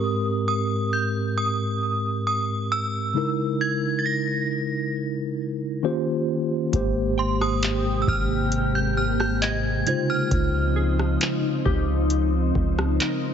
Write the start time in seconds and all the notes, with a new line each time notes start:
Already playing: G#2 G#3 C4 G4 A#4 D#6
0.48 D#6
0.93 G6
1.38 D#6
2.27 D#6
2.72 E6
3.14 C#3 G#3 D#4 E4 A#4
3.61 G#6
3.99 A6
4.06 A#6
5.83 D#3 A#3 C#4 F4 G4 C5
6.72 G#1 G#2 C3 G#3 A#3 G4 C5, kick, closed hi-hat
7.18 G5 C6
7.41 D#6, cross-stick
7.63 clap, closed hi-hat
8.02 E6
8.07 G#1 F6, kick
8.52 closed hi-hat
8.75 G6
8.97 F6
9.20 G6, cross-stick
9.42 D#5 G#6, clap, closed hi-hat
9.85 C#3 F3 G#3 C4 D#4 F4 C5 G#6, closed hi-hat
10.10 F6
10.31 C#2, kick, closed hi-hat
10.76 G#4
10.99 cross-stick
11.21 clap, closed hi-hat
11.65 C#2 G4, kick
12.10 closed hi-hat
12.55 C#2, kick
12.79 cross-stick
13.00 A#4, clap, closed hi-hat